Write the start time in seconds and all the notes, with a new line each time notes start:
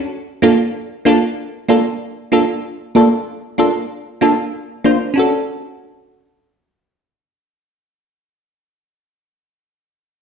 0.42 A#3 D4 F4 A4
1.05 A#3 D4 F4 A4
1.69 A#3 D4 F4 A4
2.32 A#3 D4 F4 A4
2.95 A#3 D4 F4 A4
3.58 A#3 D4 F4 A4
4.21 A#3 D4 F4 A4
4.84 A#3 D4 F4 C5
5.14 C#4 D4 F#4
5.19 A4